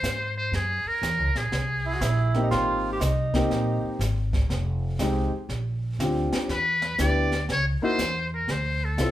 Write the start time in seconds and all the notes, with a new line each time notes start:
Already playing: C5
0.03 G#2, snare, hi-hat pedal
0.37 C5
0.52 F#2 G#4, brush sweep, snare
0.85 A#4, muted upright bass stroke
1.02 E2, snare, hi-hat pedal
1.18 C#2
1.35 A#1 G#4, snare
1.52 C2, brush sweep, snare
1.86 E4
1.94 F#4
2.01 A#1 E4, snare, hi-hat pedal
2.34 A#3 C4 D#4 G4, snare
2.43 D#4
2.51 G#1 F4, brush sweep, snare
2.92 G4
3.00 C2 D#4, snare, hi-hat pedal
3.34 A#3 C4 D#4 G4, kick, snare
3.50 A#1, brush sweep, snare
3.83 muted upright bass stroke
3.99 G#1, snare, hi-hat pedal
4.33 kick, snare
4.49 F1, brush sweep, snare
4.99 C2 G#3 C4 D#4 G4, snare, hi-hat pedal
5.49 A#1, brush sweep, snare
5.99 D2 C4 D4 F4 G4, snare, hi-hat pedal
6.32 muted upright bass stroke, snare
6.49 E2 B4, brush sweep, snare
6.82 snare
6.98 D2 B3 D4 E4 G4 D5, snare, hi-hat pedal
7.32 snare
7.49 C#2 C#5, brush sweep, snare
7.81 A#3 D#4 E4 F#4 C5, muted upright bass stroke
7.98 E2, snare, hi-hat pedal
8.34 A#4
8.47 D2 C5, brush sweep, snare
8.84 A4
8.97 C2 C4 E4 F4 A4, snare, hi-hat pedal